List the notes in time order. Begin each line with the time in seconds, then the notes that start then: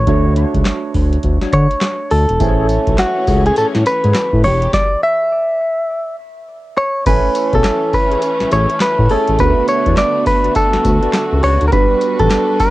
Already playing: C#5
0.06 D2 A3 D4 F#4 C#5, kick, closed hi-hat
0.36 D4 F#4 C#5, closed hi-hat
0.54 C#2, kick, closed hi-hat
0.65 snare, clap, closed hi-hat
0.94 D2, kick, open hi-hat
1.13 closed hi-hat
1.23 D2, kick, closed hi-hat
1.41 D4 F#4 C#5, snare
1.53 D3 C#5, kick, closed hi-hat
1.71 closed hi-hat
1.81 snare, clap, closed hi-hat
2.11 D2 A4, open hi-hat
2.29 E1, closed hi-hat
2.39 A1 E3 A3 C#4 E4 G#4 A4 C5 C#5 G#5, kick, closed hi-hat, tambourine
2.48 C#5
2.69 closed hi-hat, tambourine
2.87 B1, kick, closed hi-hat
2.98 F#4, snare, clap, closed hi-hat, tambourine
3.27 C#2 G#4 A4 C#5, kick, open hi-hat, tambourine
3.46 G#4, closed hi-hat
3.56 A2 G#4 A4 C#5, closed hi-hat, tambourine
3.75 A2, snare
3.86 B4, closed hi-hat, tambourine
4.03 G#2 G#4 A4 C#5, closed hi-hat
4.15 snare, clap, closed hi-hat, tambourine
4.33 A2, kick
4.44 E1 E3 B3 D4 G4 C#5, open hi-hat
4.62 closed hi-hat
4.73 D5, kick, snare
5.03 E5
6.78 C#5
7.06 A1 E3 A3 C#4 E4 B4 C#5 G#5, kick, closed hi-hat, crash, tambourine
7.35 closed hi-hat, tambourine
7.53 B1 G#4 A4 C#5, kick, closed hi-hat
7.64 snare, clap, closed hi-hat, tambourine
7.93 B4, kick, open hi-hat, tambourine
8.11 G#4 A4 C#5, closed hi-hat
8.22 closed hi-hat, tambourine
8.40 A1, snare
8.51 A1 G#4 A4 C#5, closed hi-hat, tambourine
8.70 closed hi-hat
8.80 B4, snare, clap, closed hi-hat, tambourine
8.99 A2, kick
9.09 A3 C#4 E4 G#4 A4 C#5, open hi-hat
9.28 A1, closed hi-hat
9.38 D2 D3 A3 B3 D4 F#4 A#4 B4, kick, closed hi-hat, tambourine
9.47 B4
9.68 C#5, closed hi-hat, tambourine
9.86 E2 F#4 B4 D5, kick, closed hi-hat
9.97 D5, snare, clap, closed hi-hat, tambourine
10.26 B4, kick, open hi-hat, tambourine
10.44 F#4 B4 D5, closed hi-hat
10.55 A4, kick, closed hi-hat, tambourine
10.73 D2, snare
10.85 D2, kick, closed hi-hat, tambourine
11.02 F#4 B4 D5, closed hi-hat
11.13 snare, clap, closed hi-hat, tambourine
11.33 C#2
11.42 C#2 F#4 B4 C#5 D5, open hi-hat
11.61 D2, closed hi-hat
11.68 A#4
11.72 G1 G3 B3 D4 F#4 B4, kick, closed hi-hat, tambourine
12.01 closed hi-hat, tambourine
12.19 A1 F#4 G4 A4 B4, kick, closed hi-hat
12.30 snare, clap, closed hi-hat, tambourine
12.60 B4, kick, open hi-hat, tambourine